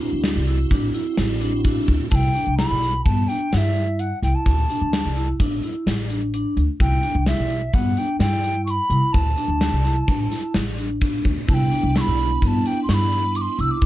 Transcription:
0.00 2.08 C4 medium
0.00 0.27 D4 medium
0.00 2.08 E4 medium
0.00 2.09 F#4 medium
0.00 closed hi-hat soft
0.13 0.32 D2 medium
0.24 snare loud
0.24 closed hi-hat medium
0.36 0.64 C2 medium
0.47 0.60 E4 medium
0.47 closed hi-hat soft
0.71 0.90 A1 medium
0.71 0.84 D4 medium
0.71 kick medium
0.71 closed hi-hat medium
0.94 1.20 E4 medium
0.94 closed hi-hat medium
1.17 1.75 A1 medium
1.17 snare loud
1.17 closed hi-hat medium
1.41 1.54 D4 medium
1.41 closed hi-hat medium
1.65 1.91 D4 medium
1.65 kick medium
1.65 closed hi-hat medium
1.88 1.98 D2 medium
1.88 kick medium
1.88 closed hi-hat medium
2.11 2.31 C2 medium
2.11 2.25 E4 medium
2.11 2.16 A5 medium
2.11 kick medium
2.11 closed hi-hat medium
2.15 2.55 G5 medium
2.35 2.48 D4 medium
2.35 closed hi-hat medium
2.47 2.66 C2 medium
2.58 2.85 E4 medium
2.58 3.02 B5 medium
2.58 snare loud
2.58 closed hi-hat medium
2.71 2.99 B1 medium
2.82 snare soft
2.82 closed hi-hat medium
3.05 3.25 G2 medium
3.05 3.19 B3 medium
3.05 3.30 A5 medium
3.05 kick medium
3.05 closed hi-hat medium
3.28 3.43 D4 medium
3.28 3.55 G5 medium
3.28 closed hi-hat medium
3.53 4.10 G2 medium
3.53 3.66 E4 medium
3.53 3.58 F#5 medium
3.53 snare loud
3.53 closed hi-hat medium
3.57 4.01 E5 medium
3.76 4.02 E4 medium
3.76 closed hi-hat soft
3.99 4.22 F#5 medium
3.99 closed hi-hat medium
4.22 4.32 C2 medium
4.22 4.49 E4 medium
4.22 4.37 G5 medium
4.22 snare soft
4.22 closed hi-hat medium
4.35 5.29 A5 medium
4.46 4.65 D2 medium
4.46 kick medium
4.46 closed hi-hat medium
4.70 4.96 D4 medium
4.70 closed hi-hat medium
4.81 5.01 D2 medium
4.93 snare loud
4.93 closed hi-hat medium
5.06 5.34 C2 medium
5.16 5.29 E4 medium
5.16 closed hi-hat medium
5.40 5.59 A1 medium
5.40 5.53 D4 medium
5.40 kick medium
5.40 closed hi-hat medium
5.63 5.90 E4 medium
5.63 closed hi-hat medium
5.86 6.44 A1 medium
5.86 snare medium
5.86 closed hi-hat medium
6.10 6.23 D4 medium
6.10 closed hi-hat medium
6.34 6.60 D4 medium
6.34 closed hi-hat medium
6.57 6.66 D2 medium
6.57 closed hi-hat medium
6.80 6.99 C2 medium
6.80 6.94 E4 medium
6.80 7.24 G5 medium
6.80 kick medium
6.80 closed hi-hat medium
7.03 7.17 D4 medium
7.03 closed hi-hat medium
7.15 7.34 C2 medium
7.26 7.54 E4 medium
7.26 7.76 E5 medium
7.26 snare loud
7.26 closed hi-hat medium
7.38 7.67 B1 medium
7.50 closed hi-hat soft
7.73 7.93 G2 medium
7.73 7.87 B3 medium
7.73 8.00 F#5 medium
7.73 kick medium
7.73 closed hi-hat medium
7.97 8.11 D4 medium
7.97 8.19 G5 medium
7.97 closed hi-hat medium
8.19 8.77 G2 medium
8.19 8.35 E4 medium
8.19 8.64 G5 medium
8.19 snare loud
8.19 closed hi-hat medium
8.44 8.71 E4 medium
8.44 closed hi-hat medium
8.66 8.71 C#6 medium
8.66 closed hi-hat medium
8.70 9.14 B5 medium
8.90 9.00 C2 medium
8.90 9.17 E4 medium
8.90 closed hi-hat medium
9.13 9.33 D2 medium
9.13 10.54 A5 medium
9.13 kick loud
9.13 closed hi-hat medium
9.37 9.63 D4 medium
9.37 closed hi-hat medium
9.48 9.68 D2 medium
9.61 snare loud
9.61 closed hi-hat medium
9.72 10.01 C2 medium
9.85 9.98 E4 medium
9.85 snare soft
9.85 closed hi-hat medium
10.07 10.27 A1 medium
10.07 10.20 D4 medium
10.07 kick medium
10.07 closed hi-hat medium
10.30 10.57 E4 medium
10.30 snare soft
10.30 closed hi-hat medium
10.54 11.12 A1 medium
10.54 snare loud
10.54 closed hi-hat medium
10.78 10.91 D4 medium
10.78 closed hi-hat medium
11.01 11.28 D4 medium
11.01 kick loud
11.01 closed hi-hat medium
11.25 11.34 D2 medium
11.25 kick medium
11.25 closed hi-hat medium
11.47 11.68 C2 medium
11.47 13.78 B3 medium
11.47 13.78 D4 medium
11.47 11.61 E4 medium
11.47 13.78 E4 medium
11.47 11.55 A5 medium
11.47 kick medium
11.47 closed hi-hat medium
11.54 11.99 G5 medium
11.71 11.85 D4 medium
11.71 closed hi-hat medium
11.83 12.02 C2 medium
11.95 12.21 E4 medium
11.95 12.02 C#6 medium
11.95 snare loud
11.95 closed hi-hat medium
12.01 12.44 B5 medium
12.07 12.35 B1 medium
12.19 closed hi-hat soft
12.42 12.61 G2 medium
12.42 12.55 B3 medium
12.42 12.48 B5 medium
12.42 kick medium
12.42 closed hi-hat medium
12.47 12.68 A5 medium
12.65 12.78 D4 medium
12.65 12.82 G5 medium
12.65 closed hi-hat medium
12.84 12.92 C6 medium
12.89 13.46 G2 medium
12.89 13.02 E4 medium
12.89 12.95 C#6 medium
12.89 snare loud
12.89 closed hi-hat medium
12.94 13.38 B5 medium
13.12 closed hi-hat medium
13.35 13.42 D6 medium
13.35 closed hi-hat medium
13.41 13.62 C6 medium
13.58 13.68 C2 medium
13.58 13.84 E4 medium
13.58 13.73 E6 medium
13.58 closed hi-hat medium
13.71 13.86 D6 medium
13.82 13.86 D2 medium
13.82 13.86 C4 medium
13.82 kick medium
13.82 closed hi-hat medium

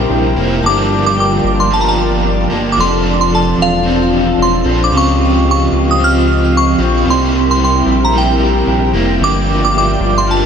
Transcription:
0.00 0.64 C3 medium
0.00 0.65 G3 medium
0.00 1.71 G3 medium
0.00 0.40 A#3 medium
0.00 0.13 C4 medium
0.00 0.38 E4 medium
0.00 0.62 E4 medium
0.00 0.36 G4 medium
0.00 0.64 G4 medium
0.00 2.74 A#4 medium
0.00 0.62 C5 medium
0.00 0.35 G5 medium
0.00 2.74 G5 medium
0.10 0.36 A#1 medium
0.10 0.24 D4 medium
0.24 0.69 E4 soft
0.36 0.63 F1 medium
0.36 2.51 A#3 medium
0.36 0.65 E4 medium
0.36 0.64 G4 medium
0.41 0.65 A#3 soft
0.62 1.40 G1 loud
0.62 1.70 G2 medium
0.62 2.78 G2 medium
0.62 2.82 D3 medium
0.62 1.70 F3 medium
0.62 2.75 F4 medium
0.62 1.16 G4 medium
0.62 4.88 D5 medium
0.62 1.91 A5 medium
0.66 1.71 A#3 medium
0.66 1.73 D4 medium
0.66 1.74 G4 medium
0.66 1.05 D6 loud
0.91 1.44 D4 medium
1.06 1.18 D6 medium
1.17 1.97 G4 medium
1.17 2.45 G5 medium
1.17 1.60 D6 medium
1.44 2.47 G1 medium
1.44 2.24 D4 medium
1.60 1.73 C6 medium
1.71 2.53 F3 medium
1.71 2.78 F3 medium
1.71 2.52 A#3 medium
1.71 2.51 D4 medium
1.71 1.79 A5 medium
1.75 2.49 G4 medium
1.81 1.87 A#5 medium
1.88 2.49 A5 medium
1.98 2.78 G4 medium
2.25 3.05 D4 medium
2.50 2.77 G1 medium
2.50 2.84 A#3 medium
2.50 2.79 A#3 soft
2.50 2.78 D4 soft
2.50 2.77 G4 soft
2.55 2.75 F3 soft
2.72 2.79 D6 medium
2.76 3.54 F1 loud
2.76 3.83 F3 medium
2.76 4.96 F3 medium
2.76 9.17 C4 medium
2.76 3.85 C4 medium
2.76 7.03 F4 medium
2.76 3.31 A4 medium
2.76 4.91 A5 medium
2.80 3.85 D4 medium
2.80 3.87 A4 medium
2.80 3.20 C6 medium
3.06 3.58 D4 medium
3.21 3.33 C6 medium
3.33 4.12 A4 medium
3.33 3.58 A5 medium
3.58 4.34 E1 medium
3.58 4.38 D4 medium
3.62 4.43 F5 medium
3.83 4.92 F3 medium
3.83 4.68 C4 medium
3.83 4.65 C4 medium
3.83 4.66 D4 medium
3.88 4.63 A4 medium
4.13 4.26 G4 medium
4.26 4.93 A4 medium
4.38 4.64 E1 medium
4.38 4.98 D4 medium
4.42 4.82 C6 medium
4.64 4.91 A#1 medium
4.64 6.79 C4 medium
4.64 4.93 D4 soft
4.64 4.92 A4 soft
4.69 4.93 C4 soft
4.84 4.95 D6 medium
4.90 5.69 C#2 loud
4.90 5.98 C#3 medium
4.90 7.05 C#3 medium
4.90 5.97 F3 medium
4.90 5.46 G4 medium
4.90 7.05 D#5 medium
4.90 6.20 F5 medium
4.90 10.46 G5 medium
4.94 6.00 C4 medium
4.94 6.00 F4 medium
4.94 6.03 G4 medium
4.94 5.50 C#6 loud
5.19 5.72 F4 medium
5.46 6.25 G4 medium
5.51 5.90 C#6 medium
5.72 6.76 C#2 medium
5.72 6.51 F4 medium
5.91 6.02 D#6 medium
5.98 6.79 F3 medium
5.98 7.12 F3 medium
5.98 6.82 C4 medium
5.98 6.80 F4 medium
6.03 6.78 G4 medium
6.03 6.57 F6 loud
6.26 7.06 G4 medium
6.52 7.12 F4 medium
6.57 6.93 C#6 loud
6.79 7.05 A#1 loud
6.79 8.94 C4 medium
6.79 7.07 F4 soft
6.79 7.06 G4 soft
6.83 7.08 C4 soft
7.05 7.83 C2 loud
7.05 8.13 C3 medium
7.05 9.21 C3 medium
7.05 8.12 G3 medium
7.05 8.14 A#3 medium
7.05 9.19 E4 medium
7.05 7.60 G4 medium
7.05 9.19 A#4 medium
7.10 8.15 E4 medium
7.10 8.16 G4 medium
7.10 7.50 C6 medium
7.34 7.85 E4 medium
7.51 7.63 C6 medium
7.60 8.39 G4 medium
7.64 8.04 C6 medium
7.86 8.63 A#1 medium
7.86 8.66 E4 medium
8.05 8.16 A#5 medium
8.12 9.22 G3 medium
8.12 10.27 G3 medium
8.12 8.97 A#3 medium
8.12 8.95 E4 medium
8.17 8.93 G4 medium
8.17 8.92 G5 medium
8.40 9.21 G4 medium
8.67 8.93 A#1 loud
8.67 9.26 E4 medium
8.94 9.20 F1 medium
8.94 10.46 A#3 medium
8.94 9.22 E4 medium
8.94 9.21 G4 medium
8.98 9.22 A#3 soft
9.19 9.97 G1 loud
9.19 10.27 G2 medium
9.19 10.46 G2 medium
9.19 10.28 D3 medium
9.19 10.25 F3 medium
9.19 10.46 F4 medium
9.19 9.73 G4 medium
9.19 10.46 A#4 medium
9.19 10.46 D5 medium
9.24 10.28 A#3 medium
9.24 10.29 D4 medium
9.24 10.31 G4 medium
9.24 9.63 D6 loud
9.47 10.00 D4 medium
9.65 9.76 D6 medium
9.74 10.46 G4 medium
9.74 10.46 E5 medium
9.78 10.18 D6 loud
9.93 10.46 G5 medium
10.00 10.46 G1 medium
10.00 10.46 D4 medium
10.18 10.30 C6 medium
10.27 10.46 F3 medium
10.27 10.46 A#3 medium
10.27 10.46 D4 medium
10.31 10.46 G4 medium
10.31 10.46 A5 medium

